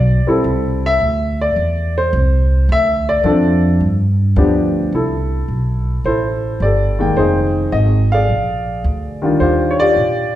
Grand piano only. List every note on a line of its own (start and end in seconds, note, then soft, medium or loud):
0.00 0.25 D5 medium
0.27 0.97 G3 medium
0.27 0.98 C4 medium
0.27 0.98 E4 medium
0.27 0.98 A4 medium
0.86 1.37 E5 loud
1.41 1.93 D5 medium
1.98 2.66 C5 medium
2.72 3.08 E5 loud
3.09 3.60 D5 medium
3.24 3.81 F3 medium
3.24 3.81 C4 medium
3.24 3.81 D4 medium
3.24 3.81 A4 medium
4.37 4.93 F3 medium
4.37 4.93 B3 medium
4.37 4.93 D4 medium
4.37 4.94 G4 medium
4.95 6.02 E4 medium
4.95 6.02 A4 medium
6.06 7.14 E4 medium
6.06 6.62 A4 medium
6.06 6.63 C5 medium
6.62 7.14 G4 medium
6.62 7.15 A4 medium
6.62 7.14 D5 medium
6.99 7.69 D#3 medium
6.99 7.70 G#3 medium
6.99 7.70 A#3 medium
6.99 7.70 G5 medium
7.17 8.26 D#4 medium
7.17 8.13 G#4 medium
7.17 7.69 C5 medium
7.72 8.09 D#5 medium
8.12 9.21 G#4 medium
8.12 9.21 D5 medium
8.12 8.81 F5 medium
9.22 9.93 D#3 medium
9.22 9.93 G3 medium
9.22 9.93 D4 medium
9.22 9.40 F4 medium
9.40 9.80 F4 medium
9.40 9.80 G4 medium
9.40 9.70 C5 medium
9.71 9.80 C#5 medium
9.80 10.35 F4 medium
9.80 10.35 G4 medium
9.80 10.32 D5 loud